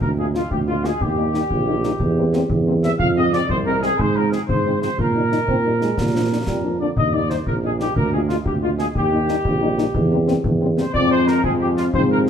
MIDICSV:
0, 0, Header, 1, 6, 480
1, 0, Start_track
1, 0, Key_signature, -3, "major"
1, 0, Tempo, 331126
1, 17, Time_signature, 6, 3, 24, 8
1, 17826, End_track
2, 0, Start_track
2, 0, Title_t, "Trumpet section"
2, 0, Program_c, 0, 61
2, 18, Note_on_c, 0, 70, 63
2, 126, Note_off_c, 0, 70, 0
2, 268, Note_on_c, 0, 68, 57
2, 374, Note_off_c, 0, 68, 0
2, 504, Note_on_c, 0, 65, 57
2, 724, Note_off_c, 0, 65, 0
2, 738, Note_on_c, 0, 67, 56
2, 846, Note_off_c, 0, 67, 0
2, 977, Note_on_c, 0, 65, 57
2, 1201, Note_off_c, 0, 65, 0
2, 1221, Note_on_c, 0, 68, 63
2, 1459, Note_off_c, 0, 68, 0
2, 1472, Note_on_c, 0, 67, 67
2, 3866, Note_off_c, 0, 67, 0
2, 4100, Note_on_c, 0, 76, 80
2, 4208, Note_off_c, 0, 76, 0
2, 4334, Note_on_c, 0, 77, 87
2, 4443, Note_off_c, 0, 77, 0
2, 4587, Note_on_c, 0, 75, 77
2, 4806, Note_off_c, 0, 75, 0
2, 4815, Note_on_c, 0, 74, 77
2, 5040, Note_off_c, 0, 74, 0
2, 5055, Note_on_c, 0, 72, 78
2, 5164, Note_off_c, 0, 72, 0
2, 5286, Note_on_c, 0, 70, 67
2, 5516, Note_off_c, 0, 70, 0
2, 5530, Note_on_c, 0, 68, 72
2, 5758, Note_off_c, 0, 68, 0
2, 5779, Note_on_c, 0, 72, 80
2, 6019, Note_on_c, 0, 70, 71
2, 6020, Note_off_c, 0, 72, 0
2, 6256, Note_on_c, 0, 68, 65
2, 6260, Note_off_c, 0, 70, 0
2, 6365, Note_off_c, 0, 68, 0
2, 6493, Note_on_c, 0, 72, 59
2, 6943, Note_off_c, 0, 72, 0
2, 6977, Note_on_c, 0, 72, 64
2, 7201, Note_off_c, 0, 72, 0
2, 7234, Note_on_c, 0, 70, 68
2, 9809, Note_off_c, 0, 70, 0
2, 9860, Note_on_c, 0, 74, 58
2, 9968, Note_off_c, 0, 74, 0
2, 10099, Note_on_c, 0, 75, 64
2, 10322, Note_off_c, 0, 75, 0
2, 10327, Note_on_c, 0, 74, 68
2, 10574, Note_off_c, 0, 74, 0
2, 10575, Note_on_c, 0, 72, 60
2, 10684, Note_off_c, 0, 72, 0
2, 10822, Note_on_c, 0, 70, 59
2, 10929, Note_off_c, 0, 70, 0
2, 11068, Note_on_c, 0, 68, 63
2, 11174, Note_off_c, 0, 68, 0
2, 11306, Note_on_c, 0, 67, 60
2, 11526, Note_off_c, 0, 67, 0
2, 11538, Note_on_c, 0, 70, 64
2, 11762, Note_off_c, 0, 70, 0
2, 11767, Note_on_c, 0, 68, 61
2, 11877, Note_off_c, 0, 68, 0
2, 12000, Note_on_c, 0, 65, 60
2, 12112, Note_off_c, 0, 65, 0
2, 12249, Note_on_c, 0, 67, 60
2, 12359, Note_off_c, 0, 67, 0
2, 12492, Note_on_c, 0, 65, 60
2, 12602, Note_off_c, 0, 65, 0
2, 12727, Note_on_c, 0, 68, 62
2, 12838, Note_off_c, 0, 68, 0
2, 12975, Note_on_c, 0, 67, 73
2, 15317, Note_off_c, 0, 67, 0
2, 15612, Note_on_c, 0, 72, 74
2, 15837, Note_off_c, 0, 72, 0
2, 15855, Note_on_c, 0, 74, 88
2, 16079, Note_off_c, 0, 74, 0
2, 16105, Note_on_c, 0, 72, 81
2, 16324, Note_off_c, 0, 72, 0
2, 16347, Note_on_c, 0, 70, 80
2, 16577, Note_on_c, 0, 68, 71
2, 16581, Note_off_c, 0, 70, 0
2, 16685, Note_off_c, 0, 68, 0
2, 16818, Note_on_c, 0, 67, 70
2, 16925, Note_off_c, 0, 67, 0
2, 17052, Note_on_c, 0, 65, 73
2, 17160, Note_off_c, 0, 65, 0
2, 17300, Note_on_c, 0, 72, 82
2, 17406, Note_off_c, 0, 72, 0
2, 17551, Note_on_c, 0, 70, 73
2, 17655, Note_off_c, 0, 70, 0
2, 17778, Note_on_c, 0, 68, 62
2, 17826, Note_off_c, 0, 68, 0
2, 17826, End_track
3, 0, Start_track
3, 0, Title_t, "French horn section"
3, 0, Program_c, 1, 60
3, 265, Note_on_c, 1, 56, 38
3, 266, Note_on_c, 1, 65, 39
3, 267, Note_on_c, 1, 58, 39
3, 350, Note_off_c, 1, 56, 0
3, 351, Note_off_c, 1, 58, 0
3, 351, Note_off_c, 1, 65, 0
3, 501, Note_on_c, 1, 56, 40
3, 501, Note_on_c, 1, 58, 41
3, 501, Note_on_c, 1, 65, 38
3, 587, Note_off_c, 1, 56, 0
3, 587, Note_off_c, 1, 58, 0
3, 587, Note_off_c, 1, 65, 0
3, 979, Note_on_c, 1, 58, 42
3, 980, Note_on_c, 1, 56, 40
3, 982, Note_on_c, 1, 65, 43
3, 1065, Note_off_c, 1, 58, 0
3, 1066, Note_off_c, 1, 56, 0
3, 1067, Note_off_c, 1, 65, 0
3, 1220, Note_on_c, 1, 58, 43
3, 1220, Note_on_c, 1, 65, 43
3, 1221, Note_on_c, 1, 56, 41
3, 1306, Note_off_c, 1, 58, 0
3, 1306, Note_off_c, 1, 65, 0
3, 1307, Note_off_c, 1, 56, 0
3, 1698, Note_on_c, 1, 58, 44
3, 1699, Note_on_c, 1, 63, 40
3, 1700, Note_on_c, 1, 55, 42
3, 1784, Note_off_c, 1, 58, 0
3, 1785, Note_off_c, 1, 63, 0
3, 1786, Note_off_c, 1, 55, 0
3, 1943, Note_on_c, 1, 63, 46
3, 1945, Note_on_c, 1, 58, 50
3, 1946, Note_on_c, 1, 55, 46
3, 2029, Note_off_c, 1, 63, 0
3, 2030, Note_off_c, 1, 55, 0
3, 2030, Note_off_c, 1, 58, 0
3, 2427, Note_on_c, 1, 58, 46
3, 2428, Note_on_c, 1, 55, 43
3, 2429, Note_on_c, 1, 63, 48
3, 2511, Note_off_c, 1, 58, 0
3, 2512, Note_off_c, 1, 55, 0
3, 2513, Note_off_c, 1, 63, 0
3, 2668, Note_on_c, 1, 63, 53
3, 2669, Note_on_c, 1, 55, 51
3, 2670, Note_on_c, 1, 58, 49
3, 2752, Note_off_c, 1, 63, 0
3, 2753, Note_off_c, 1, 55, 0
3, 2754, Note_off_c, 1, 58, 0
3, 3145, Note_on_c, 1, 58, 49
3, 3148, Note_on_c, 1, 55, 47
3, 3150, Note_on_c, 1, 60, 49
3, 3230, Note_off_c, 1, 58, 0
3, 3232, Note_off_c, 1, 55, 0
3, 3234, Note_off_c, 1, 60, 0
3, 3385, Note_on_c, 1, 55, 52
3, 3386, Note_on_c, 1, 60, 50
3, 3388, Note_on_c, 1, 58, 51
3, 3470, Note_off_c, 1, 55, 0
3, 3471, Note_off_c, 1, 60, 0
3, 3473, Note_off_c, 1, 58, 0
3, 3869, Note_on_c, 1, 60, 48
3, 3870, Note_on_c, 1, 55, 46
3, 3872, Note_on_c, 1, 58, 47
3, 3953, Note_off_c, 1, 60, 0
3, 3954, Note_off_c, 1, 55, 0
3, 3955, Note_off_c, 1, 58, 0
3, 4101, Note_on_c, 1, 55, 50
3, 4101, Note_on_c, 1, 60, 49
3, 4102, Note_on_c, 1, 58, 52
3, 4187, Note_off_c, 1, 55, 0
3, 4187, Note_off_c, 1, 58, 0
3, 4187, Note_off_c, 1, 60, 0
3, 4583, Note_on_c, 1, 60, 47
3, 4585, Note_on_c, 1, 56, 51
3, 4669, Note_off_c, 1, 60, 0
3, 4670, Note_off_c, 1, 56, 0
3, 4829, Note_on_c, 1, 56, 51
3, 4830, Note_on_c, 1, 60, 50
3, 4831, Note_off_c, 1, 56, 0
3, 4831, Note_on_c, 1, 56, 52
3, 4914, Note_off_c, 1, 60, 0
3, 4915, Note_off_c, 1, 56, 0
3, 5302, Note_on_c, 1, 60, 47
3, 5303, Note_on_c, 1, 56, 44
3, 5305, Note_off_c, 1, 56, 0
3, 5305, Note_on_c, 1, 56, 47
3, 5388, Note_off_c, 1, 60, 0
3, 5390, Note_off_c, 1, 56, 0
3, 5541, Note_on_c, 1, 56, 53
3, 5541, Note_on_c, 1, 60, 51
3, 5542, Note_off_c, 1, 56, 0
3, 5542, Note_on_c, 1, 56, 45
3, 5627, Note_off_c, 1, 60, 0
3, 5628, Note_off_c, 1, 56, 0
3, 6024, Note_on_c, 1, 60, 44
3, 6026, Note_on_c, 1, 53, 43
3, 6026, Note_on_c, 1, 56, 46
3, 6110, Note_off_c, 1, 60, 0
3, 6111, Note_off_c, 1, 53, 0
3, 6111, Note_off_c, 1, 56, 0
3, 6260, Note_on_c, 1, 53, 45
3, 6262, Note_on_c, 1, 60, 43
3, 6263, Note_on_c, 1, 56, 47
3, 6346, Note_off_c, 1, 53, 0
3, 6348, Note_off_c, 1, 60, 0
3, 6349, Note_off_c, 1, 56, 0
3, 6744, Note_on_c, 1, 53, 39
3, 6745, Note_on_c, 1, 56, 40
3, 6746, Note_on_c, 1, 60, 42
3, 6830, Note_off_c, 1, 53, 0
3, 6830, Note_off_c, 1, 56, 0
3, 6831, Note_off_c, 1, 60, 0
3, 6985, Note_on_c, 1, 53, 41
3, 6986, Note_on_c, 1, 60, 41
3, 6987, Note_on_c, 1, 56, 42
3, 7070, Note_off_c, 1, 53, 0
3, 7071, Note_off_c, 1, 60, 0
3, 7072, Note_off_c, 1, 56, 0
3, 7466, Note_on_c, 1, 55, 39
3, 7468, Note_off_c, 1, 55, 0
3, 7468, Note_on_c, 1, 55, 38
3, 7470, Note_on_c, 1, 63, 37
3, 7553, Note_off_c, 1, 55, 0
3, 7554, Note_off_c, 1, 63, 0
3, 7704, Note_on_c, 1, 63, 39
3, 7705, Note_on_c, 1, 55, 38
3, 7707, Note_off_c, 1, 55, 0
3, 7707, Note_on_c, 1, 55, 41
3, 7790, Note_off_c, 1, 63, 0
3, 7791, Note_off_c, 1, 55, 0
3, 8185, Note_on_c, 1, 55, 33
3, 8185, Note_on_c, 1, 63, 32
3, 8186, Note_off_c, 1, 55, 0
3, 8186, Note_on_c, 1, 55, 37
3, 8271, Note_off_c, 1, 55, 0
3, 8271, Note_off_c, 1, 63, 0
3, 8419, Note_on_c, 1, 55, 37
3, 8420, Note_on_c, 1, 63, 37
3, 8422, Note_off_c, 1, 55, 0
3, 8422, Note_on_c, 1, 55, 36
3, 8506, Note_off_c, 1, 63, 0
3, 8508, Note_off_c, 1, 55, 0
3, 8901, Note_on_c, 1, 58, 33
3, 8901, Note_on_c, 1, 62, 34
3, 8902, Note_on_c, 1, 53, 33
3, 8987, Note_off_c, 1, 58, 0
3, 8988, Note_off_c, 1, 53, 0
3, 8988, Note_off_c, 1, 62, 0
3, 9145, Note_on_c, 1, 53, 39
3, 9146, Note_on_c, 1, 58, 38
3, 9146, Note_on_c, 1, 62, 37
3, 9230, Note_off_c, 1, 53, 0
3, 9231, Note_off_c, 1, 58, 0
3, 9231, Note_off_c, 1, 62, 0
3, 9622, Note_on_c, 1, 53, 35
3, 9624, Note_on_c, 1, 58, 34
3, 9624, Note_on_c, 1, 62, 35
3, 9708, Note_off_c, 1, 53, 0
3, 9709, Note_off_c, 1, 58, 0
3, 9710, Note_off_c, 1, 62, 0
3, 9867, Note_on_c, 1, 58, 36
3, 9869, Note_on_c, 1, 62, 38
3, 9870, Note_on_c, 1, 53, 38
3, 9952, Note_off_c, 1, 58, 0
3, 9953, Note_off_c, 1, 62, 0
3, 9954, Note_off_c, 1, 53, 0
3, 10341, Note_on_c, 1, 63, 37
3, 10343, Note_on_c, 1, 55, 38
3, 10344, Note_on_c, 1, 58, 36
3, 10427, Note_off_c, 1, 63, 0
3, 10429, Note_off_c, 1, 55, 0
3, 10429, Note_off_c, 1, 58, 0
3, 10577, Note_on_c, 1, 63, 44
3, 10581, Note_on_c, 1, 55, 43
3, 10581, Note_on_c, 1, 58, 44
3, 10664, Note_off_c, 1, 63, 0
3, 10667, Note_off_c, 1, 55, 0
3, 10667, Note_off_c, 1, 58, 0
3, 11053, Note_on_c, 1, 63, 42
3, 11055, Note_on_c, 1, 55, 40
3, 11055, Note_on_c, 1, 58, 43
3, 11141, Note_off_c, 1, 63, 0
3, 11142, Note_off_c, 1, 55, 0
3, 11143, Note_off_c, 1, 58, 0
3, 11303, Note_on_c, 1, 58, 40
3, 11304, Note_on_c, 1, 63, 40
3, 11307, Note_on_c, 1, 55, 44
3, 11388, Note_off_c, 1, 58, 0
3, 11390, Note_off_c, 1, 63, 0
3, 11392, Note_off_c, 1, 55, 0
3, 11786, Note_on_c, 1, 58, 40
3, 11787, Note_on_c, 1, 56, 43
3, 11789, Note_on_c, 1, 65, 42
3, 11871, Note_off_c, 1, 58, 0
3, 11872, Note_off_c, 1, 56, 0
3, 11873, Note_off_c, 1, 65, 0
3, 12017, Note_on_c, 1, 58, 44
3, 12017, Note_on_c, 1, 65, 44
3, 12018, Note_on_c, 1, 56, 47
3, 12104, Note_off_c, 1, 58, 0
3, 12104, Note_off_c, 1, 65, 0
3, 12105, Note_off_c, 1, 56, 0
3, 12494, Note_on_c, 1, 65, 38
3, 12498, Note_on_c, 1, 56, 41
3, 12498, Note_on_c, 1, 58, 38
3, 12582, Note_off_c, 1, 65, 0
3, 12584, Note_off_c, 1, 58, 0
3, 12585, Note_off_c, 1, 56, 0
3, 12734, Note_on_c, 1, 65, 43
3, 12736, Note_on_c, 1, 58, 42
3, 12738, Note_on_c, 1, 56, 45
3, 12821, Note_off_c, 1, 65, 0
3, 12823, Note_off_c, 1, 58, 0
3, 12825, Note_off_c, 1, 56, 0
3, 13218, Note_on_c, 1, 63, 42
3, 13219, Note_on_c, 1, 55, 43
3, 13220, Note_on_c, 1, 58, 43
3, 13304, Note_off_c, 1, 63, 0
3, 13305, Note_off_c, 1, 55, 0
3, 13306, Note_off_c, 1, 58, 0
3, 13461, Note_on_c, 1, 55, 47
3, 13465, Note_on_c, 1, 58, 52
3, 13467, Note_on_c, 1, 63, 47
3, 13547, Note_off_c, 1, 55, 0
3, 13550, Note_off_c, 1, 58, 0
3, 13552, Note_off_c, 1, 63, 0
3, 13931, Note_on_c, 1, 63, 47
3, 13932, Note_on_c, 1, 58, 47
3, 13933, Note_on_c, 1, 55, 46
3, 14019, Note_off_c, 1, 58, 0
3, 14019, Note_off_c, 1, 63, 0
3, 14021, Note_off_c, 1, 55, 0
3, 14173, Note_on_c, 1, 58, 50
3, 14176, Note_on_c, 1, 55, 49
3, 14177, Note_on_c, 1, 63, 51
3, 14261, Note_off_c, 1, 58, 0
3, 14263, Note_off_c, 1, 55, 0
3, 14264, Note_off_c, 1, 63, 0
3, 14651, Note_on_c, 1, 58, 50
3, 14651, Note_on_c, 1, 60, 48
3, 14652, Note_on_c, 1, 55, 47
3, 14739, Note_off_c, 1, 58, 0
3, 14739, Note_off_c, 1, 60, 0
3, 14740, Note_off_c, 1, 55, 0
3, 14889, Note_on_c, 1, 55, 51
3, 14890, Note_on_c, 1, 60, 54
3, 14894, Note_on_c, 1, 58, 49
3, 14978, Note_off_c, 1, 55, 0
3, 14978, Note_off_c, 1, 60, 0
3, 14981, Note_off_c, 1, 58, 0
3, 15373, Note_on_c, 1, 55, 48
3, 15373, Note_on_c, 1, 58, 46
3, 15375, Note_on_c, 1, 60, 50
3, 15460, Note_off_c, 1, 55, 0
3, 15460, Note_off_c, 1, 58, 0
3, 15462, Note_off_c, 1, 60, 0
3, 15610, Note_on_c, 1, 60, 51
3, 15611, Note_on_c, 1, 58, 52
3, 15613, Note_on_c, 1, 55, 53
3, 15698, Note_off_c, 1, 60, 0
3, 15699, Note_off_c, 1, 58, 0
3, 15700, Note_off_c, 1, 55, 0
3, 15851, Note_on_c, 1, 53, 61
3, 15851, Note_on_c, 1, 56, 55
3, 15853, Note_on_c, 1, 60, 58
3, 16523, Note_off_c, 1, 53, 0
3, 16523, Note_off_c, 1, 56, 0
3, 16524, Note_off_c, 1, 60, 0
3, 16568, Note_on_c, 1, 53, 50
3, 16568, Note_on_c, 1, 56, 55
3, 16574, Note_on_c, 1, 60, 48
3, 17241, Note_off_c, 1, 53, 0
3, 17241, Note_off_c, 1, 56, 0
3, 17244, Note_off_c, 1, 60, 0
3, 17289, Note_on_c, 1, 53, 53
3, 17289, Note_on_c, 1, 60, 52
3, 17290, Note_on_c, 1, 56, 51
3, 17453, Note_off_c, 1, 56, 0
3, 17655, Note_on_c, 1, 55, 46
3, 17826, Note_off_c, 1, 53, 0
3, 17826, Note_off_c, 1, 55, 0
3, 17826, Note_off_c, 1, 60, 0
3, 17826, End_track
4, 0, Start_track
4, 0, Title_t, "Euphonium"
4, 0, Program_c, 2, 58
4, 7945, Note_on_c, 2, 60, 67
4, 8052, Note_off_c, 2, 60, 0
4, 8177, Note_on_c, 2, 58, 40
4, 8286, Note_off_c, 2, 58, 0
4, 8425, Note_on_c, 2, 56, 47
4, 8671, Note_on_c, 2, 55, 52
4, 8692, Note_off_c, 2, 56, 0
4, 8909, Note_on_c, 2, 53, 51
4, 8930, Note_off_c, 2, 55, 0
4, 9136, Note_off_c, 2, 53, 0
4, 9145, Note_on_c, 2, 51, 43
4, 9252, Note_off_c, 2, 51, 0
4, 9384, Note_on_c, 2, 55, 56
4, 9625, Note_on_c, 2, 53, 45
4, 9647, Note_off_c, 2, 55, 0
4, 9850, Note_off_c, 2, 53, 0
4, 9859, Note_on_c, 2, 50, 34
4, 10083, Note_off_c, 2, 50, 0
4, 17826, End_track
5, 0, Start_track
5, 0, Title_t, "Tuba"
5, 0, Program_c, 3, 58
5, 10, Note_on_c, 3, 38, 51
5, 613, Note_off_c, 3, 38, 0
5, 735, Note_on_c, 3, 38, 48
5, 1336, Note_off_c, 3, 38, 0
5, 1460, Note_on_c, 3, 39, 59
5, 2059, Note_off_c, 3, 39, 0
5, 2182, Note_on_c, 3, 34, 53
5, 2780, Note_off_c, 3, 34, 0
5, 2901, Note_on_c, 3, 40, 61
5, 3500, Note_off_c, 3, 40, 0
5, 3622, Note_on_c, 3, 40, 63
5, 4220, Note_off_c, 3, 40, 0
5, 4342, Note_on_c, 3, 41, 72
5, 4941, Note_off_c, 3, 41, 0
5, 5061, Note_on_c, 3, 36, 59
5, 5660, Note_off_c, 3, 36, 0
5, 5779, Note_on_c, 3, 44, 62
5, 6322, Note_off_c, 3, 44, 0
5, 6502, Note_on_c, 3, 44, 52
5, 7101, Note_off_c, 3, 44, 0
5, 7219, Note_on_c, 3, 46, 53
5, 7819, Note_off_c, 3, 46, 0
5, 7938, Note_on_c, 3, 46, 42
5, 8539, Note_off_c, 3, 46, 0
5, 8660, Note_on_c, 3, 46, 48
5, 9260, Note_off_c, 3, 46, 0
5, 9376, Note_on_c, 3, 41, 44
5, 9978, Note_off_c, 3, 41, 0
5, 10097, Note_on_c, 3, 39, 56
5, 10698, Note_off_c, 3, 39, 0
5, 10811, Note_on_c, 3, 34, 47
5, 11415, Note_off_c, 3, 34, 0
5, 11529, Note_on_c, 3, 38, 56
5, 12133, Note_off_c, 3, 38, 0
5, 12246, Note_on_c, 3, 38, 50
5, 12852, Note_off_c, 3, 38, 0
5, 12971, Note_on_c, 3, 39, 61
5, 13574, Note_off_c, 3, 39, 0
5, 13688, Note_on_c, 3, 34, 58
5, 14292, Note_off_c, 3, 34, 0
5, 14411, Note_on_c, 3, 40, 66
5, 15014, Note_off_c, 3, 40, 0
5, 15136, Note_on_c, 3, 40, 62
5, 15674, Note_off_c, 3, 40, 0
5, 15854, Note_on_c, 3, 41, 67
5, 16490, Note_off_c, 3, 41, 0
5, 16576, Note_on_c, 3, 41, 54
5, 17211, Note_off_c, 3, 41, 0
5, 17295, Note_on_c, 3, 44, 65
5, 17826, Note_off_c, 3, 44, 0
5, 17826, End_track
6, 0, Start_track
6, 0, Title_t, "Drums"
6, 17, Note_on_c, 9, 35, 59
6, 162, Note_off_c, 9, 35, 0
6, 500, Note_on_c, 9, 38, 32
6, 645, Note_off_c, 9, 38, 0
6, 740, Note_on_c, 9, 35, 62
6, 885, Note_off_c, 9, 35, 0
6, 1223, Note_on_c, 9, 38, 30
6, 1368, Note_off_c, 9, 38, 0
6, 1459, Note_on_c, 9, 35, 61
6, 1604, Note_off_c, 9, 35, 0
6, 1943, Note_on_c, 9, 38, 31
6, 2088, Note_off_c, 9, 38, 0
6, 2180, Note_on_c, 9, 35, 58
6, 2325, Note_off_c, 9, 35, 0
6, 2658, Note_on_c, 9, 38, 32
6, 2803, Note_off_c, 9, 38, 0
6, 2896, Note_on_c, 9, 35, 65
6, 3041, Note_off_c, 9, 35, 0
6, 3378, Note_on_c, 9, 38, 33
6, 3523, Note_off_c, 9, 38, 0
6, 3617, Note_on_c, 9, 35, 60
6, 3762, Note_off_c, 9, 35, 0
6, 4101, Note_on_c, 9, 38, 34
6, 4246, Note_off_c, 9, 38, 0
6, 4339, Note_on_c, 9, 35, 65
6, 4484, Note_off_c, 9, 35, 0
6, 4826, Note_on_c, 9, 38, 33
6, 4971, Note_off_c, 9, 38, 0
6, 5063, Note_on_c, 9, 35, 64
6, 5208, Note_off_c, 9, 35, 0
6, 5545, Note_on_c, 9, 38, 31
6, 5690, Note_off_c, 9, 38, 0
6, 5786, Note_on_c, 9, 35, 61
6, 5931, Note_off_c, 9, 35, 0
6, 6266, Note_on_c, 9, 38, 32
6, 6411, Note_off_c, 9, 38, 0
6, 6509, Note_on_c, 9, 35, 63
6, 6654, Note_off_c, 9, 35, 0
6, 6990, Note_on_c, 9, 38, 31
6, 7135, Note_off_c, 9, 38, 0
6, 7227, Note_on_c, 9, 35, 64
6, 7372, Note_off_c, 9, 35, 0
6, 7708, Note_on_c, 9, 38, 30
6, 7853, Note_off_c, 9, 38, 0
6, 7945, Note_on_c, 9, 35, 58
6, 8090, Note_off_c, 9, 35, 0
6, 8424, Note_on_c, 9, 38, 30
6, 8569, Note_off_c, 9, 38, 0
6, 8663, Note_on_c, 9, 35, 63
6, 8663, Note_on_c, 9, 38, 48
6, 8808, Note_off_c, 9, 35, 0
6, 8808, Note_off_c, 9, 38, 0
6, 9379, Note_on_c, 9, 35, 58
6, 9379, Note_on_c, 9, 38, 40
6, 9524, Note_off_c, 9, 35, 0
6, 9524, Note_off_c, 9, 38, 0
6, 10099, Note_on_c, 9, 35, 63
6, 10244, Note_off_c, 9, 35, 0
6, 10580, Note_on_c, 9, 38, 30
6, 10725, Note_off_c, 9, 38, 0
6, 10822, Note_on_c, 9, 35, 56
6, 10967, Note_off_c, 9, 35, 0
6, 11302, Note_on_c, 9, 38, 32
6, 11447, Note_off_c, 9, 38, 0
6, 11541, Note_on_c, 9, 35, 63
6, 11686, Note_off_c, 9, 35, 0
6, 12021, Note_on_c, 9, 38, 31
6, 12166, Note_off_c, 9, 38, 0
6, 12258, Note_on_c, 9, 35, 63
6, 12402, Note_off_c, 9, 35, 0
6, 12736, Note_on_c, 9, 38, 31
6, 12881, Note_off_c, 9, 38, 0
6, 12978, Note_on_c, 9, 35, 68
6, 13123, Note_off_c, 9, 35, 0
6, 13457, Note_on_c, 9, 38, 34
6, 13602, Note_off_c, 9, 38, 0
6, 13697, Note_on_c, 9, 35, 65
6, 13842, Note_off_c, 9, 35, 0
6, 14180, Note_on_c, 9, 38, 33
6, 14325, Note_off_c, 9, 38, 0
6, 14417, Note_on_c, 9, 35, 71
6, 14562, Note_off_c, 9, 35, 0
6, 14900, Note_on_c, 9, 38, 32
6, 15045, Note_off_c, 9, 38, 0
6, 15135, Note_on_c, 9, 35, 66
6, 15280, Note_off_c, 9, 35, 0
6, 15620, Note_on_c, 9, 38, 34
6, 15765, Note_off_c, 9, 38, 0
6, 15861, Note_on_c, 9, 35, 68
6, 16006, Note_off_c, 9, 35, 0
6, 16344, Note_on_c, 9, 38, 35
6, 16488, Note_off_c, 9, 38, 0
6, 16580, Note_on_c, 9, 35, 63
6, 16724, Note_off_c, 9, 35, 0
6, 17063, Note_on_c, 9, 38, 32
6, 17207, Note_off_c, 9, 38, 0
6, 17301, Note_on_c, 9, 35, 71
6, 17445, Note_off_c, 9, 35, 0
6, 17782, Note_on_c, 9, 38, 33
6, 17826, Note_off_c, 9, 38, 0
6, 17826, End_track
0, 0, End_of_file